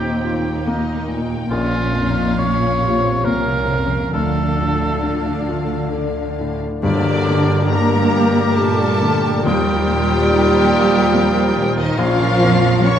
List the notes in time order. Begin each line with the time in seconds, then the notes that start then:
Already playing: D#2 A#2 D#3 A#3 C4 D#4 F4 G4 G5
0.09 D#5
0.25 D#4 F4
0.38 A#4
0.66 A#3 D#5
0.94 A#3
1.08 A#2 G5
1.22 D#4
1.50 A#1 A#2 C#4 F4 C#5 F5
1.80 F3
1.94 F2 D#4
2.09 A#3
2.39 C#4 F4 C#5
2.68 C#5
2.82 C3 F4
2.97 A#4
3.25 C2 C3 A#3 C#4 A#4 C#5 F5
3.55 A#3
3.70 F2 A#3
3.85 F3
4.13 D2 D3 A3 D4 F4 A4 F5
4.43 D4
4.60 A2
4.73 A3
5.02 D4 F4
5.33 D5
5.49 F4
5.63 A4
5.93 A3 D5
6.24 A3
6.40 A2
6.53 D4
6.81 G2 D3 G3 A#3 D4 G4 A#4 D5 D6, tam-tam
7.04 D3
7.27 D3 G3
7.49 G4
7.70 A#3 D4 G4 A#4 D5 A#5 D6
8.14 G4 G5
8.37 D6
8.57 A#2 G3 A3 A4 G5 A5
9.01 D3 D5
9.22 G4
9.40 D#3 G3 F4 G4
9.44 D#2 F3 A#4 G5 D#6
9.64 D#4
9.86 A#2 A#3
10.06 F4
10.27 D#4 D#5
10.50 A#4
10.71 F4 F5
10.91 D#6
11.13 A#3 F5
11.34 A#4
11.55 A#2 D#5
11.76 D#3 D#4 F4 D#5
11.96 A#1 A#2 F3 C#4 F4 A#4 F5 C#6
12.18 F3
12.41 F2 A#3
12.83 F3 C#4 F4 A#4 C#5 C#6